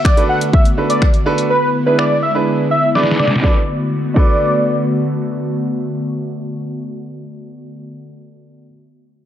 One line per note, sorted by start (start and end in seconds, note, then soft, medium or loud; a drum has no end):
0.00 3.40 D3 medium
0.00 1.48 A3 medium
0.00 3.40 B3 medium
0.00 1.48 F#4 medium
0.05 0.24 D5 medium
0.05 finger snap loud
0.05 kick loud
0.17 0.47 D4 medium
0.17 0.48 F#4 medium
0.17 0.48 A4 medium
0.17 0.48 B4 medium
0.17 closed hi-hat soft
0.29 0.39 F#5 medium
0.41 closed hi-hat medium
0.53 0.63 E5 medium
0.53 kick loud
0.65 closed hi-hat medium
0.77 1.02 D4 medium
0.77 1.02 F#4 medium
0.77 1.02 A4 medium
0.77 1.02 B4 medium
0.90 1.08 D5 medium
0.90 closed hi-hat medium
1.02 finger snap loud
1.02 kick loud
1.14 closed hi-hat soft
1.26 1.50 D4 medium
1.26 1.50 F#4 medium
1.26 1.50 A4 medium
1.26 1.50 B4 loud
1.38 closed hi-hat medium
1.50 3.42 G#3 medium
1.50 3.42 E4 medium
1.50 1.69 B4 loud
1.86 2.11 D4 medium
1.86 2.11 E4 medium
1.86 2.11 G#4 medium
1.86 1.96 B4 medium
1.86 2.11 B4 medium
1.98 2.17 D5 medium
1.98 finger snap loud
2.23 2.32 E5 medium
2.35 2.65 D4 medium
2.35 2.65 E4 medium
2.35 2.65 G#4 medium
2.35 2.65 B4 medium
2.71 2.90 E5 medium
2.95 3.20 D4 medium
2.95 3.20 E4 medium
2.95 3.20 G#4 medium
2.95 3.20 B4 medium
2.95 3.05 D5 medium
2.95 snare medium
3.03 snare medium
3.11 snare medium
3.19 3.29 D5 medium
3.19 snare medium
3.27 snare medium
3.36 snare medium
3.42 7.94 D3 medium
3.42 7.94 A3 medium
3.42 7.94 B3 medium
3.42 3.56 D4 medium
3.42 3.57 F#4 medium
3.42 7.94 F#4 medium
3.42 3.58 A4 medium
3.42 3.57 D5 medium
3.42 kick loud
3.42 snare medium
3.46 3.58 B4 medium
4.14 8.64 D4 medium
4.14 8.65 F#4 medium
4.14 8.67 A4 medium
4.14 4.85 D5 medium
4.14 kick medium
4.14 crash medium
4.18 8.68 B4 medium